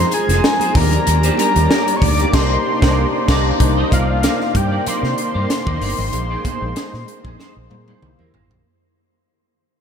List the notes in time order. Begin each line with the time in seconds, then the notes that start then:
Already playing: F3 G#3 C4 D#4 F4 G#4 A#4 C5 C6
0.11 G#5, muted clean electric guitar stroke, closed hi-hat, muted conga
0.29 F1 D#4 G#4 C5, snare, closed hi-hat
0.44 muted clean electric guitar stroke, snare
0.60 D#4 G#4 C5, closed hi-hat, high conga, low conga
0.75 D#2 G3 A#3 D4 D#4 F4 G4 A#4 D5 A#5, kick, open hi-hat, muted conga, high conga
0.82 G4
0.91 muted clean electric guitar stroke, closed hi-hat, low conga
1.06 D#2, muted clean electric guitar stroke, closed hi-hat, muted conga
1.23 D4 G4 C5, closed hi-hat
1.37 D4 G4 A#4 A#5, closed hi-hat, muted conga, high conga
1.56 D#2 A#3 D4 D#4 G4 C#5, muted clean electric guitar stroke, closed hi-hat
1.63 D5
1.70 D4 G4 A#4, snare
1.88 muted clean electric guitar stroke, closed hi-hat
1.96 C#6
2.01 D2 D6, muted clean electric guitar stroke, kick, open hi-hat, muted conga
2.19 A#3 D4 D#4 G4 A#4 D5, closed hi-hat
2.32 C2 C3 A#3 D4 D#4 G4 A#4 C5 D5 C6, kick, snare, crash
2.81 C2 A#3 D4 D#4 G4 A#4 C5 D5, kick, snare
3.28 C2 A#3 D4 D#4 G4 A#4 C5 D5, kick, snare, crash
3.60 C2 C3 D#3 A#3 D4 D#4 C5 D5, muted clean electric guitar stroke, kick, closed hi-hat
3.77 D#4 A#4 D#5
3.91 C2 D#4 A#4 D5 F5, kick, closed hi-hat, high conga
4.09 A#3 D4 D#4 D5, muted clean electric guitar stroke
4.23 D#4 A#4 D5, snare, closed hi-hat, muted conga
4.40 muted clean electric guitar stroke, snare, high conga
4.54 G2 G5, muted clean electric guitar stroke, kick, closed hi-hat, muted conga
4.71 D#4 A#4 D5
4.86 D#4 A#4 D5 C6, muted fingered electric bass stroke, closed hi-hat, low conga
5.03 C3, muted clean electric guitar stroke, snare
5.18 A#3 D4 D#4 C5, muted clean electric guitar stroke, closed hi-hat
5.34 G2 D#4 A#4 D5
5.49 muted clean electric guitar stroke, snare, closed hi-hat, muted conga
5.66 D#2 D#4 A#4 D5, kick, high conga, low conga
5.81 G1 D#4 A#4 D5, open hi-hat, muted conga, high conga
5.98 G#1, muted clean electric guitar stroke, low conga
6.13 A#1 G#3 A#3 D#4 G#4 C5, muted clean electric guitar stroke, closed hi-hat, muted conga
6.30 D#4 G#4 D5
6.44 D#4 G#4 C5, kick, closed hi-hat, high conga
6.61 A#1 A#3 D4 G#4 C5, muted clean electric guitar stroke
6.68 D#4
6.76 D#4 G#4 C5, snare, closed hi-hat
6.93 A#2, muted clean electric guitar stroke, snare, high conga
7.07 muted clean electric guitar stroke, closed hi-hat
7.24 A#1 D#4 G#4 C5, kick
7.39 D#4 G#4 C5, snare, low conga
7.56 A#1, muted clean electric guitar stroke
7.70 A#2 A#3 D#4 G#4 C5, muted clean electric guitar stroke, high tom, muted conga
7.88 D#4 G#4 C5, high tom
8.02 C2 C3 A#3 D#4 E4 G4 C5, muted clean electric guitar stroke, mid tom, muted conga
8.09 E4
8.19 E2 E4 A#4 C5, high conga, low conga
8.34 G#1 E4 A#4 C5, floor tom, high conga
8.50 A#1, muted clean electric guitar stroke, floor tom, low conga